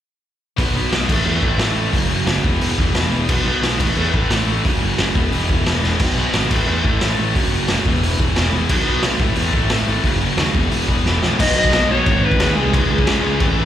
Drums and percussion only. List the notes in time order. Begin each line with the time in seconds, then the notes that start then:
0.58 kick, open hi-hat
0.92 snare, open hi-hat
1.09 kick, crash
1.43 kick
1.59 snare, open hi-hat
1.93 kick, open hi-hat
2.27 snare, open hi-hat
2.44 kick
2.61 open hi-hat
2.78 kick
2.95 snare, open hi-hat
3.29 kick, crash
3.63 snare, open hi-hat
3.80 kick, crash
4.14 kick
4.30 snare, open hi-hat
4.65 kick, open hi-hat
4.98 snare, open hi-hat
5.15 kick
5.32 open hi-hat
5.50 kick
5.66 snare, open hi-hat
5.83 snare
6.00 kick, open hi-hat, crash
6.33 snare, open hi-hat
6.51 kick, crash
6.84 kick
7.01 snare, open hi-hat
7.35 kick, open hi-hat
7.68 snare, open hi-hat
7.86 kick
8.03 open hi-hat
8.19 kick
8.36 snare, open hi-hat
8.69 kick, crash
9.03 snare, open hi-hat
9.20 kick
9.35 open hi-hat
9.53 kick
9.70 snare, open hi-hat
10.04 kick, open hi-hat
10.37 snare, open hi-hat
10.55 kick
10.71 open hi-hat
10.88 kick
11.06 snare
11.23 snare
11.39 kick, crash
11.64 kick
11.73 snare, crash
12.06 kick, crash
12.32 kick
12.40 snare, crash
12.74 kick, crash
12.98 kick
13.07 snare, crash
13.40 kick, crash